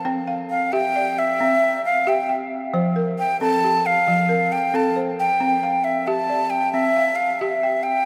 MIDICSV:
0, 0, Header, 1, 3, 480
1, 0, Start_track
1, 0, Tempo, 445467
1, 67, Time_signature, 12, 3, 24, 8
1, 8677, End_track
2, 0, Start_track
2, 0, Title_t, "Flute"
2, 0, Program_c, 0, 73
2, 539, Note_on_c, 0, 77, 91
2, 779, Note_on_c, 0, 79, 106
2, 795, Note_off_c, 0, 77, 0
2, 1277, Note_on_c, 0, 76, 103
2, 1293, Note_off_c, 0, 79, 0
2, 1992, Note_off_c, 0, 76, 0
2, 1998, Note_on_c, 0, 77, 92
2, 2247, Note_on_c, 0, 79, 80
2, 2263, Note_off_c, 0, 77, 0
2, 2477, Note_off_c, 0, 79, 0
2, 3435, Note_on_c, 0, 79, 90
2, 3654, Note_off_c, 0, 79, 0
2, 3675, Note_on_c, 0, 81, 106
2, 4159, Note_on_c, 0, 77, 100
2, 4176, Note_off_c, 0, 81, 0
2, 4873, Note_on_c, 0, 79, 88
2, 4889, Note_off_c, 0, 77, 0
2, 5121, Note_on_c, 0, 81, 84
2, 5137, Note_off_c, 0, 79, 0
2, 5353, Note_off_c, 0, 81, 0
2, 5598, Note_on_c, 0, 79, 89
2, 6294, Note_on_c, 0, 76, 79
2, 6310, Note_off_c, 0, 79, 0
2, 6541, Note_on_c, 0, 81, 92
2, 6557, Note_off_c, 0, 76, 0
2, 7004, Note_on_c, 0, 79, 85
2, 7021, Note_off_c, 0, 81, 0
2, 7242, Note_off_c, 0, 79, 0
2, 7249, Note_on_c, 0, 76, 92
2, 7709, Note_on_c, 0, 77, 82
2, 7726, Note_off_c, 0, 76, 0
2, 7968, Note_on_c, 0, 76, 83
2, 7984, Note_off_c, 0, 77, 0
2, 8439, Note_on_c, 0, 79, 84
2, 8455, Note_off_c, 0, 76, 0
2, 8677, Note_off_c, 0, 79, 0
2, 8677, End_track
3, 0, Start_track
3, 0, Title_t, "Balafon"
3, 0, Program_c, 1, 12
3, 0, Note_on_c, 1, 72, 63
3, 54, Note_on_c, 1, 79, 72
3, 55, Note_on_c, 1, 60, 85
3, 296, Note_on_c, 1, 77, 67
3, 298, Note_off_c, 1, 72, 0
3, 541, Note_off_c, 1, 60, 0
3, 780, Note_off_c, 1, 79, 0
3, 785, Note_on_c, 1, 67, 86
3, 786, Note_on_c, 1, 76, 71
3, 1021, Note_off_c, 1, 77, 0
3, 1034, Note_on_c, 1, 74, 65
3, 1266, Note_off_c, 1, 67, 0
3, 1506, Note_off_c, 1, 76, 0
3, 1514, Note_on_c, 1, 60, 86
3, 1750, Note_off_c, 1, 74, 0
3, 1990, Note_off_c, 1, 60, 0
3, 2228, Note_on_c, 1, 76, 70
3, 2229, Note_on_c, 1, 67, 85
3, 2468, Note_on_c, 1, 79, 66
3, 2708, Note_off_c, 1, 67, 0
3, 2947, Note_off_c, 1, 76, 0
3, 2948, Note_on_c, 1, 53, 89
3, 2950, Note_on_c, 1, 72, 74
3, 3187, Note_off_c, 1, 79, 0
3, 3188, Note_on_c, 1, 70, 65
3, 3427, Note_off_c, 1, 53, 0
3, 3668, Note_off_c, 1, 72, 0
3, 3675, Note_on_c, 1, 69, 73
3, 3676, Note_on_c, 1, 60, 86
3, 3907, Note_off_c, 1, 70, 0
3, 3921, Note_on_c, 1, 67, 64
3, 4151, Note_off_c, 1, 60, 0
3, 4390, Note_off_c, 1, 69, 0
3, 4394, Note_on_c, 1, 53, 80
3, 4621, Note_on_c, 1, 70, 69
3, 4633, Note_off_c, 1, 67, 0
3, 4870, Note_off_c, 1, 53, 0
3, 5105, Note_on_c, 1, 60, 82
3, 5109, Note_on_c, 1, 69, 73
3, 5343, Note_off_c, 1, 70, 0
3, 5345, Note_on_c, 1, 72, 65
3, 5585, Note_off_c, 1, 60, 0
3, 5825, Note_on_c, 1, 60, 86
3, 5825, Note_on_c, 1, 79, 72
3, 5827, Note_off_c, 1, 69, 0
3, 6065, Note_off_c, 1, 72, 0
3, 6068, Note_on_c, 1, 77, 66
3, 6305, Note_off_c, 1, 60, 0
3, 6544, Note_on_c, 1, 76, 70
3, 6545, Note_off_c, 1, 79, 0
3, 6546, Note_on_c, 1, 67, 85
3, 6783, Note_on_c, 1, 74, 64
3, 6786, Note_off_c, 1, 77, 0
3, 7025, Note_off_c, 1, 67, 0
3, 7259, Note_on_c, 1, 60, 77
3, 7264, Note_off_c, 1, 76, 0
3, 7504, Note_off_c, 1, 74, 0
3, 7504, Note_on_c, 1, 77, 69
3, 7742, Note_off_c, 1, 60, 0
3, 7987, Note_on_c, 1, 67, 80
3, 7987, Note_on_c, 1, 76, 74
3, 8224, Note_off_c, 1, 77, 0
3, 8224, Note_on_c, 1, 79, 60
3, 8465, Note_off_c, 1, 67, 0
3, 8677, Note_off_c, 1, 76, 0
3, 8677, Note_off_c, 1, 79, 0
3, 8677, End_track
0, 0, End_of_file